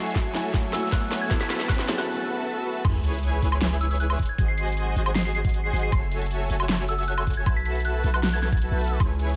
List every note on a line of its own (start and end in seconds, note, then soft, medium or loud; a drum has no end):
0.00 0.31 F#3 medium
0.00 2.04 F#3 medium
0.00 0.32 A3 medium
0.00 1.29 A3 medium
0.00 0.33 E4 medium
0.00 0.32 F#4 medium
0.00 0.32 A4 medium
0.00 0.32 C#5 medium
0.00 0.32 E5 medium
0.00 2.05 E5 medium
0.00 0.32 G#5 medium
0.00 0.33 G#5 medium
0.00 1.27 G#5 medium
0.00 riser medium
0.06 closed hi-hat medium
0.11 closed hi-hat medium
0.15 kick medium
0.15 snare medium
0.15 closed hi-hat medium
0.34 0.70 F#3 loud
0.34 0.71 A3 medium
0.34 0.71 E4 medium
0.34 1.29 F#4 medium
0.34 1.29 A4 medium
0.34 1.29 C#5 medium
0.34 1.29 E5 medium
0.34 1.29 G#5 medium
0.34 0.71 G#5 loud
0.34 snare medium
0.34 open hi-hat medium
0.54 kick loud
0.54 snare medium
0.54 closed hi-hat medium
0.71 1.27 F#3 medium
0.71 1.28 A3 medium
0.71 1.29 E4 medium
0.71 0.79 E6 medium
0.71 snare medium
0.71 closed hi-hat medium
0.75 1.30 G#5 loud
0.83 0.89 E6 medium
0.83 closed hi-hat medium
0.87 closed hi-hat medium
0.92 1.03 F#6 medium
0.92 kick loud
0.92 snare medium
0.92 closed hi-hat medium
1.11 snare medium
1.11 closed hi-hat soft
1.15 closed hi-hat medium
1.18 1.27 G#6 medium
1.18 closed hi-hat medium
1.29 1.85 F#3 loud
1.29 1.86 B3 medium
1.29 2.07 B3 medium
1.29 1.87 E4 medium
1.29 1.86 F#4 medium
1.29 1.86 A4 medium
1.29 2.07 A4 medium
1.29 1.86 B4 medium
1.29 1.86 E5 medium
1.29 1.86 A5 medium
1.29 1.37 G#6 medium
1.29 kick loud
1.29 snare medium
1.29 closed hi-hat medium
1.33 1.87 A4 loud
1.40 1.47 B6 medium
1.40 snare medium
1.50 1.56 B6 medium
1.50 snare loud
1.50 closed hi-hat medium
1.60 snare medium
1.60 closed hi-hat soft
1.65 closed hi-hat medium
1.69 1.80 F#6 medium
1.69 kick loud
1.69 snare medium
1.69 closed hi-hat medium
1.79 snare medium
1.88 1.96 F#3 loud
1.88 1.96 B3 medium
1.88 1.96 E4 medium
1.88 2.63 F#4 loud
1.88 1.97 G#4 loud
1.88 2.63 A4 medium
1.88 2.63 B4 medium
1.88 2.63 E5 medium
1.88 2.63 A5 loud
1.88 snare loud
1.88 open hi-hat medium
1.98 2.04 F#6 medium
1.98 snare medium
2.65 2.82 F#4 medium
2.65 2.82 A4 medium
2.65 2.82 B4 medium
2.65 2.82 E5 medium
2.65 2.82 A5 loud
2.85 3.40 C#2 loud
2.85 3.40 E4 medium
2.85 3.40 G#4 medium
2.85 3.40 B4 medium
2.85 3.40 C#5 medium
2.85 3.40 G#5 medium
2.85 kick loud
2.85 closed hi-hat medium
2.85 crash loud
2.85 sub drop medium
2.85 high woodblock medium
3.04 closed hi-hat medium
3.14 closed hi-hat soft
3.18 closed hi-hat medium
3.23 closed hi-hat medium
3.42 4.16 C#2 loud
3.42 4.18 E4 medium
3.42 4.18 G#4 medium
3.42 4.18 B4 medium
3.42 4.18 C#5 medium
3.42 4.18 G#5 loud
3.42 open hi-hat loud
3.52 high woodblock medium
3.62 snare loud
3.62 closed hi-hat medium
3.81 3.87 E6 medium
3.81 closed hi-hat medium
3.91 3.97 E6 medium
3.91 closed hi-hat medium
3.95 closed hi-hat medium
4.00 4.10 F#6 medium
4.00 closed hi-hat medium
4.10 high woodblock medium
4.19 kick medium
4.19 closed hi-hat medium
4.23 closed hi-hat medium
4.26 4.35 G#6 medium
4.26 closed hi-hat medium
4.38 4.94 G#1 loud
4.38 4.94 F#4 medium
4.38 4.94 G#4 medium
4.38 4.94 C5 medium
4.38 4.94 D#5 medium
4.38 4.94 G#5 medium
4.38 4.45 G#6 medium
4.38 kick loud
4.38 closed hi-hat medium
4.48 4.54 C7 medium
4.58 4.64 C7 medium
4.58 closed hi-hat medium
4.68 closed hi-hat medium
4.72 closed hi-hat medium
4.77 closed hi-hat medium
4.96 5.71 G#1 loud
4.96 5.71 F#4 medium
4.96 5.71 G#4 medium
4.96 5.71 C5 medium
4.96 5.71 D#5 medium
4.96 5.71 G#5 loud
4.96 open hi-hat loud
5.06 high woodblock medium
5.15 5.22 C7 medium
5.15 snare loud
5.15 closed hi-hat medium
5.25 5.31 C7 medium
5.35 5.45 C7 medium
5.35 closed hi-hat medium
5.44 kick loud
5.44 closed hi-hat medium
5.49 closed hi-hat medium
5.54 closed hi-hat medium
5.64 5.70 C7 medium
5.73 5.90 G#1 loud
5.73 5.90 F#4 medium
5.73 5.90 G#4 medium
5.73 5.90 C5 medium
5.73 5.90 D#5 medium
5.73 5.90 G#5 medium
5.73 5.79 C7 medium
5.73 closed hi-hat medium
5.76 closed hi-hat medium
5.79 5.96 C7 medium
5.79 closed hi-hat medium
5.92 6.48 F#1 loud
5.92 6.48 F#4 medium
5.92 6.48 A4 medium
5.92 6.48 C#5 medium
5.92 6.48 E5 medium
5.92 6.48 G#5 medium
5.92 kick loud
5.92 closed hi-hat medium
5.92 high woodblock medium
6.12 closed hi-hat medium
6.21 closed hi-hat medium
6.26 closed hi-hat medium
6.31 closed hi-hat medium
6.50 7.48 F#1 medium
6.50 7.44 F#4 medium
6.50 7.44 A4 medium
6.50 7.44 C#5 medium
6.50 7.44 E5 medium
6.50 7.44 G#5 loud
6.50 open hi-hat loud
6.60 high woodblock medium
6.69 snare loud
6.69 closed hi-hat medium
6.88 6.95 E6 medium
6.88 closed hi-hat medium
6.98 7.04 E6 medium
6.98 closed hi-hat soft
7.03 closed hi-hat medium
7.08 7.18 F#6 medium
7.08 closed hi-hat medium
7.18 high woodblock medium
7.27 kick medium
7.27 closed hi-hat soft
7.30 closed hi-hat medium
7.33 7.43 G#6 medium
7.33 closed hi-hat medium
7.46 8.02 B1 loud
7.46 8.02 F#4 medium
7.46 8.02 A4 medium
7.46 8.02 B4 medium
7.46 8.02 E5 medium
7.46 8.02 A5 medium
7.46 7.53 G#6 medium
7.46 kick loud
7.46 closed hi-hat medium
7.46 high woodblock medium
7.56 7.62 B6 medium
7.65 7.72 B6 medium
7.65 closed hi-hat medium
7.75 closed hi-hat soft
7.80 closed hi-hat medium
7.85 7.95 F#6 medium
7.85 closed hi-hat medium
8.04 8.69 B1 loud
8.04 8.69 F#4 loud
8.04 8.69 A4 medium
8.04 8.69 B4 medium
8.04 8.69 E5 medium
8.04 8.69 A5 loud
8.04 open hi-hat medium
8.14 8.20 F#6 medium
8.14 high woodblock medium
8.23 8.30 F#6 medium
8.23 snare loud
8.23 closed hi-hat medium
8.33 8.39 G#6 medium
8.42 8.49 G#6 medium
8.42 snare soft
8.42 closed hi-hat medium
8.52 8.91 G#6 medium
8.52 kick loud
8.52 closed hi-hat medium
8.57 closed hi-hat medium
8.62 closed hi-hat medium
8.71 8.98 B1 loud
8.71 8.98 F#4 medium
8.71 8.98 A4 medium
8.71 8.98 B4 medium
8.71 8.98 E5 medium
8.71 8.98 A5 loud
8.81 closed hi-hat soft
8.84 closed hi-hat medium
8.87 closed hi-hat medium
9.00 9.36 C#2 loud
9.00 9.36 E4 medium
9.00 9.36 G#4 medium
9.00 9.36 B4 medium
9.00 9.36 C#5 medium
9.00 9.36 G#5 medium
9.00 kick loud
9.00 closed hi-hat medium
9.00 high woodblock medium
9.19 closed hi-hat medium
9.29 closed hi-hat soft